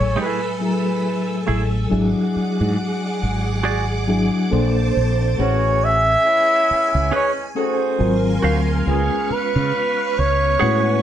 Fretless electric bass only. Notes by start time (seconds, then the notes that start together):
0.01 A1
1.49 A1
1.92 G#1
2.36 muted fretless electric bass stroke
2.61 G#2
3.23 G#1
4.53 A#1
4.97 A#1
5.40 A1
6.71 muted fretless electric bass stroke
6.95 C#2
8.00 G#1
8.44 D2
8.87 C#2
9.30 muted fretless electric bass stroke
9.56 C#3
10.19 C#2
10.62 A2